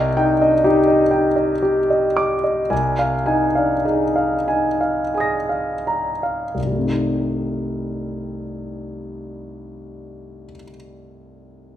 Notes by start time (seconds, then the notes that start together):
Already playing: C2 D#5 G5
0.17 D#4 G5
0.41 D4 D#5
0.64 D#4 G4
0.87 D#5
1.11 D#4 G5
1.36 D#5
1.62 G4
1.90 D#5
2.17 D6
2.44 D#5
2.70 C2 G#5
2.99 F5
3.26 D#4 G#5
3.55 D4 F5
3.85 D#4 G#4
4.16 F5
4.48 D#4 G#5
4.81 F5
5.14 G#4 G#5 D#6
5.20 A#6
5.49 F5
5.87 A#5
6.23 F5
6.55 C2
6.60 G2
6.66 G3
6.72 A3
6.79 C4
6.84 D#4